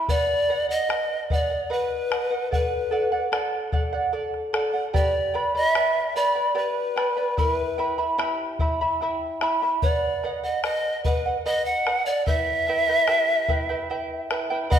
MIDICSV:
0, 0, Header, 1, 4, 480
1, 0, Start_track
1, 0, Tempo, 811908
1, 53, Time_signature, 3, 2, 24, 8
1, 8744, End_track
2, 0, Start_track
2, 0, Title_t, "Charango"
2, 0, Program_c, 0, 24
2, 51, Note_on_c, 0, 71, 69
2, 59, Note_on_c, 0, 78, 78
2, 280, Note_off_c, 0, 71, 0
2, 288, Note_on_c, 0, 71, 58
2, 290, Note_off_c, 0, 78, 0
2, 293, Note_on_c, 0, 75, 69
2, 297, Note_on_c, 0, 78, 64
2, 401, Note_off_c, 0, 78, 0
2, 408, Note_off_c, 0, 75, 0
2, 408, Note_on_c, 0, 78, 54
2, 410, Note_off_c, 0, 71, 0
2, 415, Note_on_c, 0, 75, 45
2, 524, Note_off_c, 0, 75, 0
2, 525, Note_on_c, 0, 71, 56
2, 527, Note_off_c, 0, 78, 0
2, 531, Note_on_c, 0, 75, 56
2, 535, Note_on_c, 0, 78, 60
2, 762, Note_off_c, 0, 71, 0
2, 767, Note_off_c, 0, 75, 0
2, 769, Note_on_c, 0, 71, 55
2, 771, Note_off_c, 0, 78, 0
2, 774, Note_on_c, 0, 75, 52
2, 778, Note_on_c, 0, 78, 64
2, 879, Note_off_c, 0, 78, 0
2, 886, Note_off_c, 0, 75, 0
2, 886, Note_on_c, 0, 78, 51
2, 891, Note_off_c, 0, 71, 0
2, 893, Note_on_c, 0, 75, 42
2, 1002, Note_off_c, 0, 75, 0
2, 1003, Note_off_c, 0, 78, 0
2, 1004, Note_on_c, 0, 71, 70
2, 1009, Note_on_c, 0, 75, 61
2, 1010, Note_on_c, 0, 78, 65
2, 1237, Note_off_c, 0, 71, 0
2, 1242, Note_off_c, 0, 75, 0
2, 1244, Note_on_c, 0, 71, 55
2, 1245, Note_off_c, 0, 78, 0
2, 1249, Note_on_c, 0, 75, 56
2, 1252, Note_on_c, 0, 78, 58
2, 1356, Note_off_c, 0, 78, 0
2, 1363, Note_on_c, 0, 78, 52
2, 1364, Note_off_c, 0, 75, 0
2, 1367, Note_off_c, 0, 71, 0
2, 1371, Note_on_c, 0, 75, 36
2, 1481, Note_off_c, 0, 75, 0
2, 1483, Note_on_c, 0, 69, 50
2, 1486, Note_off_c, 0, 78, 0
2, 1489, Note_on_c, 0, 74, 57
2, 1493, Note_on_c, 0, 78, 62
2, 1713, Note_off_c, 0, 69, 0
2, 1720, Note_off_c, 0, 74, 0
2, 1720, Note_on_c, 0, 69, 59
2, 1722, Note_off_c, 0, 78, 0
2, 1727, Note_on_c, 0, 74, 64
2, 1729, Note_on_c, 0, 78, 63
2, 1837, Note_off_c, 0, 78, 0
2, 1844, Note_on_c, 0, 78, 59
2, 1845, Note_off_c, 0, 69, 0
2, 1846, Note_off_c, 0, 74, 0
2, 1854, Note_on_c, 0, 74, 41
2, 1959, Note_off_c, 0, 74, 0
2, 1962, Note_off_c, 0, 78, 0
2, 1963, Note_on_c, 0, 69, 76
2, 1966, Note_on_c, 0, 74, 70
2, 1969, Note_on_c, 0, 78, 72
2, 2193, Note_off_c, 0, 69, 0
2, 2197, Note_off_c, 0, 74, 0
2, 2200, Note_on_c, 0, 69, 54
2, 2201, Note_off_c, 0, 78, 0
2, 2204, Note_on_c, 0, 74, 59
2, 2208, Note_on_c, 0, 78, 72
2, 2314, Note_off_c, 0, 78, 0
2, 2322, Note_on_c, 0, 78, 58
2, 2324, Note_off_c, 0, 69, 0
2, 2324, Note_off_c, 0, 74, 0
2, 2331, Note_on_c, 0, 74, 46
2, 2436, Note_off_c, 0, 74, 0
2, 2439, Note_on_c, 0, 69, 53
2, 2441, Note_off_c, 0, 78, 0
2, 2443, Note_on_c, 0, 74, 61
2, 2448, Note_on_c, 0, 78, 58
2, 2672, Note_off_c, 0, 69, 0
2, 2678, Note_off_c, 0, 74, 0
2, 2679, Note_on_c, 0, 69, 57
2, 2683, Note_off_c, 0, 78, 0
2, 2685, Note_on_c, 0, 74, 66
2, 2690, Note_on_c, 0, 78, 71
2, 2792, Note_off_c, 0, 78, 0
2, 2797, Note_off_c, 0, 74, 0
2, 2799, Note_on_c, 0, 78, 49
2, 2803, Note_off_c, 0, 69, 0
2, 2807, Note_on_c, 0, 74, 36
2, 2914, Note_off_c, 0, 74, 0
2, 2917, Note_off_c, 0, 78, 0
2, 2918, Note_on_c, 0, 67, 73
2, 2919, Note_on_c, 0, 79, 67
2, 2920, Note_on_c, 0, 71, 69
2, 2921, Note_on_c, 0, 74, 80
2, 2923, Note_on_c, 0, 83, 74
2, 3148, Note_off_c, 0, 79, 0
2, 3153, Note_off_c, 0, 71, 0
2, 3155, Note_off_c, 0, 74, 0
2, 3155, Note_on_c, 0, 79, 54
2, 3157, Note_off_c, 0, 83, 0
2, 3160, Note_on_c, 0, 71, 61
2, 3162, Note_off_c, 0, 67, 0
2, 3162, Note_on_c, 0, 74, 64
2, 3164, Note_on_c, 0, 83, 62
2, 3273, Note_off_c, 0, 83, 0
2, 3275, Note_off_c, 0, 74, 0
2, 3280, Note_on_c, 0, 83, 52
2, 3281, Note_off_c, 0, 71, 0
2, 3281, Note_off_c, 0, 79, 0
2, 3283, Note_on_c, 0, 74, 53
2, 3288, Note_on_c, 0, 71, 39
2, 3395, Note_off_c, 0, 71, 0
2, 3397, Note_off_c, 0, 74, 0
2, 3399, Note_on_c, 0, 79, 55
2, 3400, Note_off_c, 0, 83, 0
2, 3403, Note_on_c, 0, 71, 58
2, 3404, Note_on_c, 0, 74, 57
2, 3407, Note_on_c, 0, 83, 58
2, 3633, Note_off_c, 0, 79, 0
2, 3635, Note_off_c, 0, 71, 0
2, 3636, Note_off_c, 0, 74, 0
2, 3639, Note_off_c, 0, 83, 0
2, 3640, Note_on_c, 0, 79, 50
2, 3642, Note_on_c, 0, 71, 54
2, 3643, Note_on_c, 0, 74, 54
2, 3646, Note_on_c, 0, 83, 62
2, 3745, Note_off_c, 0, 83, 0
2, 3750, Note_off_c, 0, 74, 0
2, 3752, Note_on_c, 0, 83, 45
2, 3755, Note_off_c, 0, 71, 0
2, 3757, Note_on_c, 0, 74, 51
2, 3762, Note_on_c, 0, 71, 41
2, 3763, Note_off_c, 0, 79, 0
2, 3865, Note_off_c, 0, 71, 0
2, 3867, Note_off_c, 0, 74, 0
2, 3868, Note_off_c, 0, 83, 0
2, 3870, Note_on_c, 0, 67, 61
2, 3871, Note_on_c, 0, 79, 61
2, 3872, Note_on_c, 0, 71, 64
2, 3874, Note_on_c, 0, 74, 70
2, 3875, Note_on_c, 0, 83, 71
2, 4109, Note_off_c, 0, 79, 0
2, 4112, Note_off_c, 0, 71, 0
2, 4114, Note_off_c, 0, 74, 0
2, 4116, Note_on_c, 0, 79, 54
2, 4117, Note_off_c, 0, 83, 0
2, 4118, Note_off_c, 0, 67, 0
2, 4120, Note_on_c, 0, 71, 51
2, 4121, Note_on_c, 0, 74, 53
2, 4124, Note_on_c, 0, 83, 60
2, 4231, Note_off_c, 0, 83, 0
2, 4235, Note_off_c, 0, 74, 0
2, 4237, Note_off_c, 0, 71, 0
2, 4238, Note_on_c, 0, 83, 47
2, 4241, Note_off_c, 0, 79, 0
2, 4242, Note_on_c, 0, 74, 41
2, 4244, Note_on_c, 0, 71, 36
2, 4357, Note_on_c, 0, 79, 47
2, 4358, Note_off_c, 0, 71, 0
2, 4360, Note_off_c, 0, 83, 0
2, 4360, Note_on_c, 0, 64, 58
2, 4362, Note_off_c, 0, 74, 0
2, 4364, Note_on_c, 0, 76, 63
2, 4367, Note_on_c, 0, 83, 59
2, 4592, Note_off_c, 0, 79, 0
2, 4596, Note_off_c, 0, 64, 0
2, 4597, Note_off_c, 0, 76, 0
2, 4599, Note_on_c, 0, 79, 56
2, 4601, Note_off_c, 0, 83, 0
2, 4603, Note_on_c, 0, 64, 64
2, 4604, Note_on_c, 0, 76, 62
2, 4608, Note_on_c, 0, 83, 67
2, 4712, Note_off_c, 0, 83, 0
2, 4715, Note_off_c, 0, 76, 0
2, 4719, Note_on_c, 0, 83, 53
2, 4720, Note_off_c, 0, 64, 0
2, 4722, Note_on_c, 0, 76, 51
2, 4723, Note_off_c, 0, 79, 0
2, 4727, Note_on_c, 0, 64, 38
2, 4831, Note_off_c, 0, 64, 0
2, 4832, Note_off_c, 0, 76, 0
2, 4835, Note_off_c, 0, 83, 0
2, 4837, Note_on_c, 0, 67, 63
2, 4838, Note_on_c, 0, 64, 71
2, 4838, Note_on_c, 0, 79, 74
2, 4839, Note_on_c, 0, 76, 75
2, 4842, Note_on_c, 0, 83, 74
2, 5075, Note_off_c, 0, 79, 0
2, 5078, Note_off_c, 0, 64, 0
2, 5080, Note_off_c, 0, 76, 0
2, 5082, Note_off_c, 0, 67, 0
2, 5082, Note_on_c, 0, 79, 58
2, 5085, Note_off_c, 0, 83, 0
2, 5085, Note_on_c, 0, 64, 59
2, 5088, Note_on_c, 0, 76, 66
2, 5092, Note_on_c, 0, 83, 65
2, 5201, Note_off_c, 0, 83, 0
2, 5205, Note_off_c, 0, 79, 0
2, 5206, Note_off_c, 0, 64, 0
2, 5206, Note_off_c, 0, 76, 0
2, 5209, Note_on_c, 0, 83, 54
2, 5213, Note_on_c, 0, 76, 49
2, 5216, Note_on_c, 0, 64, 47
2, 5327, Note_off_c, 0, 64, 0
2, 5328, Note_off_c, 0, 83, 0
2, 5330, Note_off_c, 0, 76, 0
2, 5331, Note_on_c, 0, 79, 53
2, 5334, Note_on_c, 0, 64, 62
2, 5337, Note_on_c, 0, 76, 60
2, 5337, Note_on_c, 0, 83, 57
2, 5559, Note_off_c, 0, 79, 0
2, 5563, Note_off_c, 0, 64, 0
2, 5564, Note_off_c, 0, 76, 0
2, 5566, Note_off_c, 0, 83, 0
2, 5566, Note_on_c, 0, 79, 56
2, 5570, Note_on_c, 0, 64, 68
2, 5572, Note_on_c, 0, 76, 64
2, 5573, Note_on_c, 0, 83, 73
2, 5682, Note_off_c, 0, 83, 0
2, 5687, Note_off_c, 0, 76, 0
2, 5687, Note_off_c, 0, 79, 0
2, 5689, Note_off_c, 0, 64, 0
2, 5689, Note_on_c, 0, 83, 47
2, 5694, Note_on_c, 0, 76, 45
2, 5698, Note_on_c, 0, 64, 37
2, 5808, Note_off_c, 0, 64, 0
2, 5809, Note_off_c, 0, 83, 0
2, 5810, Note_on_c, 0, 71, 72
2, 5811, Note_off_c, 0, 76, 0
2, 5816, Note_on_c, 0, 78, 81
2, 6045, Note_off_c, 0, 71, 0
2, 6051, Note_off_c, 0, 78, 0
2, 6052, Note_on_c, 0, 71, 55
2, 6056, Note_on_c, 0, 75, 58
2, 6058, Note_on_c, 0, 78, 63
2, 6162, Note_off_c, 0, 78, 0
2, 6169, Note_on_c, 0, 78, 55
2, 6170, Note_off_c, 0, 75, 0
2, 6171, Note_off_c, 0, 71, 0
2, 6177, Note_on_c, 0, 75, 39
2, 6284, Note_off_c, 0, 75, 0
2, 6287, Note_on_c, 0, 71, 53
2, 6289, Note_off_c, 0, 78, 0
2, 6292, Note_on_c, 0, 75, 58
2, 6297, Note_on_c, 0, 78, 54
2, 6526, Note_off_c, 0, 71, 0
2, 6531, Note_off_c, 0, 75, 0
2, 6533, Note_on_c, 0, 71, 55
2, 6534, Note_off_c, 0, 78, 0
2, 6538, Note_on_c, 0, 75, 59
2, 6540, Note_on_c, 0, 78, 60
2, 6648, Note_off_c, 0, 78, 0
2, 6652, Note_off_c, 0, 71, 0
2, 6654, Note_off_c, 0, 75, 0
2, 6655, Note_on_c, 0, 78, 51
2, 6663, Note_on_c, 0, 75, 38
2, 6769, Note_off_c, 0, 75, 0
2, 6771, Note_off_c, 0, 78, 0
2, 6773, Note_on_c, 0, 71, 65
2, 6776, Note_on_c, 0, 75, 72
2, 6778, Note_on_c, 0, 78, 68
2, 7008, Note_off_c, 0, 71, 0
2, 7014, Note_off_c, 0, 75, 0
2, 7015, Note_off_c, 0, 78, 0
2, 7015, Note_on_c, 0, 71, 53
2, 7020, Note_on_c, 0, 75, 50
2, 7022, Note_on_c, 0, 78, 60
2, 7127, Note_off_c, 0, 78, 0
2, 7134, Note_off_c, 0, 71, 0
2, 7134, Note_on_c, 0, 78, 42
2, 7137, Note_off_c, 0, 75, 0
2, 7143, Note_on_c, 0, 75, 35
2, 7248, Note_off_c, 0, 78, 0
2, 7251, Note_on_c, 0, 76, 57
2, 7254, Note_on_c, 0, 64, 59
2, 7255, Note_off_c, 0, 75, 0
2, 7257, Note_on_c, 0, 71, 64
2, 7259, Note_on_c, 0, 79, 62
2, 7489, Note_off_c, 0, 76, 0
2, 7495, Note_off_c, 0, 64, 0
2, 7496, Note_off_c, 0, 71, 0
2, 7496, Note_on_c, 0, 76, 57
2, 7497, Note_off_c, 0, 79, 0
2, 7501, Note_on_c, 0, 64, 54
2, 7503, Note_on_c, 0, 71, 66
2, 7505, Note_on_c, 0, 79, 66
2, 7610, Note_off_c, 0, 79, 0
2, 7614, Note_off_c, 0, 71, 0
2, 7615, Note_off_c, 0, 76, 0
2, 7617, Note_on_c, 0, 79, 49
2, 7618, Note_off_c, 0, 64, 0
2, 7621, Note_on_c, 0, 71, 49
2, 7626, Note_on_c, 0, 64, 39
2, 7729, Note_off_c, 0, 64, 0
2, 7730, Note_off_c, 0, 71, 0
2, 7730, Note_off_c, 0, 79, 0
2, 7733, Note_on_c, 0, 67, 70
2, 7733, Note_on_c, 0, 76, 72
2, 7736, Note_on_c, 0, 64, 71
2, 7737, Note_on_c, 0, 71, 76
2, 7737, Note_on_c, 0, 79, 82
2, 7965, Note_off_c, 0, 76, 0
2, 7967, Note_off_c, 0, 64, 0
2, 7970, Note_off_c, 0, 71, 0
2, 7972, Note_off_c, 0, 79, 0
2, 7972, Note_on_c, 0, 76, 61
2, 7974, Note_on_c, 0, 64, 69
2, 7975, Note_off_c, 0, 67, 0
2, 7977, Note_on_c, 0, 71, 68
2, 7979, Note_on_c, 0, 79, 60
2, 8087, Note_off_c, 0, 79, 0
2, 8092, Note_off_c, 0, 71, 0
2, 8094, Note_off_c, 0, 76, 0
2, 8094, Note_on_c, 0, 79, 51
2, 8095, Note_off_c, 0, 64, 0
2, 8099, Note_on_c, 0, 71, 54
2, 8102, Note_on_c, 0, 64, 43
2, 8211, Note_off_c, 0, 64, 0
2, 8215, Note_off_c, 0, 71, 0
2, 8216, Note_off_c, 0, 79, 0
2, 8216, Note_on_c, 0, 76, 53
2, 8219, Note_on_c, 0, 64, 51
2, 8222, Note_on_c, 0, 71, 57
2, 8223, Note_on_c, 0, 79, 64
2, 8447, Note_off_c, 0, 76, 0
2, 8451, Note_off_c, 0, 64, 0
2, 8453, Note_off_c, 0, 71, 0
2, 8454, Note_off_c, 0, 79, 0
2, 8454, Note_on_c, 0, 76, 52
2, 8459, Note_on_c, 0, 64, 60
2, 8460, Note_on_c, 0, 71, 66
2, 8461, Note_on_c, 0, 79, 66
2, 8567, Note_off_c, 0, 79, 0
2, 8570, Note_off_c, 0, 71, 0
2, 8574, Note_off_c, 0, 64, 0
2, 8574, Note_on_c, 0, 79, 53
2, 8576, Note_off_c, 0, 76, 0
2, 8577, Note_on_c, 0, 71, 45
2, 8581, Note_on_c, 0, 64, 47
2, 8684, Note_off_c, 0, 71, 0
2, 8689, Note_off_c, 0, 64, 0
2, 8691, Note_on_c, 0, 71, 82
2, 8696, Note_off_c, 0, 79, 0
2, 8696, Note_on_c, 0, 75, 89
2, 8698, Note_on_c, 0, 78, 86
2, 8744, Note_off_c, 0, 71, 0
2, 8744, Note_off_c, 0, 75, 0
2, 8744, Note_off_c, 0, 78, 0
2, 8744, End_track
3, 0, Start_track
3, 0, Title_t, "Pan flute"
3, 0, Program_c, 1, 75
3, 57, Note_on_c, 1, 74, 99
3, 391, Note_off_c, 1, 74, 0
3, 418, Note_on_c, 1, 75, 102
3, 785, Note_on_c, 1, 74, 82
3, 794, Note_off_c, 1, 75, 0
3, 1016, Note_off_c, 1, 74, 0
3, 1019, Note_on_c, 1, 71, 91
3, 1471, Note_off_c, 1, 71, 0
3, 1498, Note_on_c, 1, 71, 77
3, 1950, Note_off_c, 1, 71, 0
3, 2934, Note_on_c, 1, 74, 88
3, 3267, Note_off_c, 1, 74, 0
3, 3289, Note_on_c, 1, 76, 106
3, 3642, Note_on_c, 1, 74, 87
3, 3651, Note_off_c, 1, 76, 0
3, 3884, Note_off_c, 1, 74, 0
3, 3887, Note_on_c, 1, 71, 78
3, 4343, Note_off_c, 1, 71, 0
3, 4364, Note_on_c, 1, 70, 83
3, 4447, Note_off_c, 1, 70, 0
3, 4447, Note_on_c, 1, 71, 83
3, 4822, Note_off_c, 1, 71, 0
3, 5809, Note_on_c, 1, 74, 88
3, 6146, Note_off_c, 1, 74, 0
3, 6172, Note_on_c, 1, 75, 78
3, 6282, Note_off_c, 1, 75, 0
3, 6288, Note_on_c, 1, 75, 95
3, 6512, Note_off_c, 1, 75, 0
3, 6530, Note_on_c, 1, 71, 78
3, 6754, Note_off_c, 1, 71, 0
3, 6772, Note_on_c, 1, 75, 89
3, 6884, Note_off_c, 1, 75, 0
3, 6891, Note_on_c, 1, 78, 87
3, 7115, Note_off_c, 1, 78, 0
3, 7130, Note_on_c, 1, 74, 78
3, 7243, Note_off_c, 1, 74, 0
3, 7252, Note_on_c, 1, 76, 107
3, 8434, Note_off_c, 1, 76, 0
3, 8703, Note_on_c, 1, 75, 88
3, 8744, Note_off_c, 1, 75, 0
3, 8744, End_track
4, 0, Start_track
4, 0, Title_t, "Bombo"
4, 50, Note_on_c, 9, 43, 64
4, 109, Note_off_c, 9, 43, 0
4, 295, Note_on_c, 9, 37, 20
4, 354, Note_off_c, 9, 37, 0
4, 532, Note_on_c, 9, 37, 65
4, 591, Note_off_c, 9, 37, 0
4, 770, Note_on_c, 9, 43, 65
4, 829, Note_off_c, 9, 43, 0
4, 1011, Note_on_c, 9, 37, 19
4, 1071, Note_off_c, 9, 37, 0
4, 1252, Note_on_c, 9, 37, 63
4, 1311, Note_off_c, 9, 37, 0
4, 1493, Note_on_c, 9, 43, 63
4, 1552, Note_off_c, 9, 43, 0
4, 1968, Note_on_c, 9, 37, 66
4, 2027, Note_off_c, 9, 37, 0
4, 2087, Note_on_c, 9, 37, 23
4, 2146, Note_off_c, 9, 37, 0
4, 2202, Note_on_c, 9, 43, 71
4, 2262, Note_off_c, 9, 43, 0
4, 2565, Note_on_c, 9, 37, 24
4, 2625, Note_off_c, 9, 37, 0
4, 2684, Note_on_c, 9, 37, 82
4, 2743, Note_off_c, 9, 37, 0
4, 2923, Note_on_c, 9, 43, 83
4, 2982, Note_off_c, 9, 43, 0
4, 3166, Note_on_c, 9, 37, 23
4, 3225, Note_off_c, 9, 37, 0
4, 3401, Note_on_c, 9, 37, 70
4, 3461, Note_off_c, 9, 37, 0
4, 3885, Note_on_c, 9, 37, 21
4, 3944, Note_off_c, 9, 37, 0
4, 4124, Note_on_c, 9, 37, 66
4, 4183, Note_off_c, 9, 37, 0
4, 4361, Note_on_c, 9, 43, 67
4, 4421, Note_off_c, 9, 43, 0
4, 4602, Note_on_c, 9, 37, 21
4, 4662, Note_off_c, 9, 37, 0
4, 4845, Note_on_c, 9, 37, 62
4, 4904, Note_off_c, 9, 37, 0
4, 5079, Note_on_c, 9, 43, 67
4, 5139, Note_off_c, 9, 43, 0
4, 5326, Note_on_c, 9, 37, 21
4, 5386, Note_off_c, 9, 37, 0
4, 5565, Note_on_c, 9, 37, 67
4, 5624, Note_off_c, 9, 37, 0
4, 5808, Note_on_c, 9, 43, 77
4, 5867, Note_off_c, 9, 43, 0
4, 6051, Note_on_c, 9, 37, 25
4, 6110, Note_off_c, 9, 37, 0
4, 6289, Note_on_c, 9, 37, 64
4, 6348, Note_off_c, 9, 37, 0
4, 6531, Note_on_c, 9, 43, 70
4, 6590, Note_off_c, 9, 43, 0
4, 6775, Note_on_c, 9, 37, 21
4, 6834, Note_off_c, 9, 37, 0
4, 7015, Note_on_c, 9, 37, 61
4, 7075, Note_off_c, 9, 37, 0
4, 7253, Note_on_c, 9, 43, 68
4, 7312, Note_off_c, 9, 43, 0
4, 7492, Note_on_c, 9, 37, 21
4, 7551, Note_off_c, 9, 37, 0
4, 7612, Note_on_c, 9, 37, 23
4, 7671, Note_off_c, 9, 37, 0
4, 7730, Note_on_c, 9, 37, 66
4, 7789, Note_off_c, 9, 37, 0
4, 7972, Note_on_c, 9, 37, 21
4, 7972, Note_on_c, 9, 43, 63
4, 8031, Note_off_c, 9, 37, 0
4, 8031, Note_off_c, 9, 43, 0
4, 8096, Note_on_c, 9, 37, 21
4, 8155, Note_off_c, 9, 37, 0
4, 8458, Note_on_c, 9, 37, 64
4, 8517, Note_off_c, 9, 37, 0
4, 8700, Note_on_c, 9, 43, 76
4, 8744, Note_off_c, 9, 43, 0
4, 8744, End_track
0, 0, End_of_file